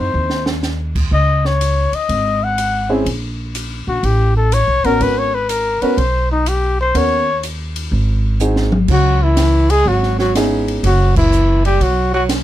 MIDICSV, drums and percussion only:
0, 0, Header, 1, 2, 480
1, 0, Start_track
1, 0, Key_signature, 5, "minor"
1, 0, Tempo, 485830
1, 1103, Time_signature, 4, 2, 24, 8
1, 8784, Key_signature, 4, "minor"
1, 12285, End_track
2, 0, Start_track
2, 0, Title_t, "Drums"
2, 294, Note_on_c, 9, 38, 51
2, 392, Note_off_c, 9, 38, 0
2, 455, Note_on_c, 9, 38, 77
2, 554, Note_off_c, 9, 38, 0
2, 621, Note_on_c, 9, 38, 57
2, 622, Note_on_c, 9, 44, 46
2, 720, Note_off_c, 9, 38, 0
2, 721, Note_off_c, 9, 44, 0
2, 943, Note_on_c, 9, 36, 68
2, 943, Note_on_c, 9, 49, 66
2, 1042, Note_off_c, 9, 36, 0
2, 1042, Note_off_c, 9, 49, 0
2, 1102, Note_on_c, 9, 36, 29
2, 1201, Note_off_c, 9, 36, 0
2, 1432, Note_on_c, 9, 38, 42
2, 1530, Note_off_c, 9, 38, 0
2, 1590, Note_on_c, 9, 44, 47
2, 1590, Note_on_c, 9, 51, 60
2, 1688, Note_off_c, 9, 44, 0
2, 1688, Note_off_c, 9, 51, 0
2, 1907, Note_on_c, 9, 51, 44
2, 2005, Note_off_c, 9, 51, 0
2, 2065, Note_on_c, 9, 36, 30
2, 2067, Note_on_c, 9, 51, 55
2, 2164, Note_off_c, 9, 36, 0
2, 2166, Note_off_c, 9, 51, 0
2, 2548, Note_on_c, 9, 44, 51
2, 2548, Note_on_c, 9, 51, 61
2, 2647, Note_off_c, 9, 44, 0
2, 2647, Note_off_c, 9, 51, 0
2, 3025, Note_on_c, 9, 36, 34
2, 3026, Note_on_c, 9, 51, 57
2, 3124, Note_off_c, 9, 36, 0
2, 3125, Note_off_c, 9, 51, 0
2, 3505, Note_on_c, 9, 44, 47
2, 3505, Note_on_c, 9, 51, 63
2, 3604, Note_off_c, 9, 44, 0
2, 3604, Note_off_c, 9, 51, 0
2, 3985, Note_on_c, 9, 36, 29
2, 3985, Note_on_c, 9, 51, 47
2, 4084, Note_off_c, 9, 36, 0
2, 4084, Note_off_c, 9, 51, 0
2, 4465, Note_on_c, 9, 44, 57
2, 4465, Note_on_c, 9, 51, 61
2, 4564, Note_off_c, 9, 44, 0
2, 4564, Note_off_c, 9, 51, 0
2, 4785, Note_on_c, 9, 51, 44
2, 4884, Note_off_c, 9, 51, 0
2, 4945, Note_on_c, 9, 36, 33
2, 4945, Note_on_c, 9, 51, 56
2, 5044, Note_off_c, 9, 36, 0
2, 5044, Note_off_c, 9, 51, 0
2, 5425, Note_on_c, 9, 44, 57
2, 5425, Note_on_c, 9, 51, 65
2, 5524, Note_off_c, 9, 44, 0
2, 5524, Note_off_c, 9, 51, 0
2, 5748, Note_on_c, 9, 51, 41
2, 5847, Note_off_c, 9, 51, 0
2, 5905, Note_on_c, 9, 36, 28
2, 5907, Note_on_c, 9, 51, 49
2, 6004, Note_off_c, 9, 36, 0
2, 6006, Note_off_c, 9, 51, 0
2, 6384, Note_on_c, 9, 44, 61
2, 6384, Note_on_c, 9, 51, 65
2, 6483, Note_off_c, 9, 44, 0
2, 6483, Note_off_c, 9, 51, 0
2, 6864, Note_on_c, 9, 36, 33
2, 6865, Note_on_c, 9, 51, 60
2, 6963, Note_off_c, 9, 36, 0
2, 6964, Note_off_c, 9, 51, 0
2, 7343, Note_on_c, 9, 44, 54
2, 7343, Note_on_c, 9, 51, 58
2, 7442, Note_off_c, 9, 44, 0
2, 7442, Note_off_c, 9, 51, 0
2, 7665, Note_on_c, 9, 51, 62
2, 7764, Note_off_c, 9, 51, 0
2, 7820, Note_on_c, 9, 36, 30
2, 7919, Note_off_c, 9, 36, 0
2, 8297, Note_on_c, 9, 44, 65
2, 8396, Note_off_c, 9, 44, 0
2, 8459, Note_on_c, 9, 38, 56
2, 8558, Note_off_c, 9, 38, 0
2, 8616, Note_on_c, 9, 47, 71
2, 8715, Note_off_c, 9, 47, 0
2, 8776, Note_on_c, 9, 49, 77
2, 8778, Note_on_c, 9, 36, 73
2, 8874, Note_off_c, 9, 49, 0
2, 8877, Note_off_c, 9, 36, 0
2, 9254, Note_on_c, 9, 38, 75
2, 9255, Note_on_c, 9, 44, 50
2, 9255, Note_on_c, 9, 51, 69
2, 9353, Note_off_c, 9, 38, 0
2, 9354, Note_off_c, 9, 44, 0
2, 9354, Note_off_c, 9, 51, 0
2, 9581, Note_on_c, 9, 51, 61
2, 9680, Note_off_c, 9, 51, 0
2, 9742, Note_on_c, 9, 36, 28
2, 9840, Note_off_c, 9, 36, 0
2, 9908, Note_on_c, 9, 38, 28
2, 10007, Note_off_c, 9, 38, 0
2, 10065, Note_on_c, 9, 38, 43
2, 10164, Note_off_c, 9, 38, 0
2, 10229, Note_on_c, 9, 38, 70
2, 10230, Note_on_c, 9, 44, 52
2, 10230, Note_on_c, 9, 51, 74
2, 10328, Note_off_c, 9, 38, 0
2, 10329, Note_off_c, 9, 44, 0
2, 10329, Note_off_c, 9, 51, 0
2, 10554, Note_on_c, 9, 51, 46
2, 10653, Note_off_c, 9, 51, 0
2, 10704, Note_on_c, 9, 36, 34
2, 10707, Note_on_c, 9, 51, 70
2, 10803, Note_off_c, 9, 36, 0
2, 10805, Note_off_c, 9, 51, 0
2, 11027, Note_on_c, 9, 36, 85
2, 11029, Note_on_c, 9, 49, 78
2, 11126, Note_off_c, 9, 36, 0
2, 11128, Note_off_c, 9, 49, 0
2, 11185, Note_on_c, 9, 44, 57
2, 11284, Note_off_c, 9, 44, 0
2, 11509, Note_on_c, 9, 51, 46
2, 11608, Note_off_c, 9, 51, 0
2, 11664, Note_on_c, 9, 36, 27
2, 11667, Note_on_c, 9, 51, 57
2, 11763, Note_off_c, 9, 36, 0
2, 11766, Note_off_c, 9, 51, 0
2, 12144, Note_on_c, 9, 38, 76
2, 12145, Note_on_c, 9, 44, 57
2, 12145, Note_on_c, 9, 51, 66
2, 12243, Note_off_c, 9, 38, 0
2, 12244, Note_off_c, 9, 44, 0
2, 12244, Note_off_c, 9, 51, 0
2, 12285, End_track
0, 0, End_of_file